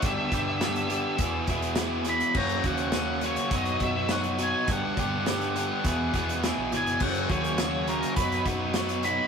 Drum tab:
CC |----------------|x---------------|----------------|x---------------|
HH |x-x-xxx-x-xxx-xx|-xxxx-xxxxx-xxx-|x-x-xxx-x-xxx-xx|-xxxx-xxxxx-xxx-|
SD |----o-------o---|----o-------o---|----o-------o---|----o-------o---|
BD |o-o-----o-o-----|o-o-----o-o-----|o-o-----o-o-----|o-o-----o-o-----|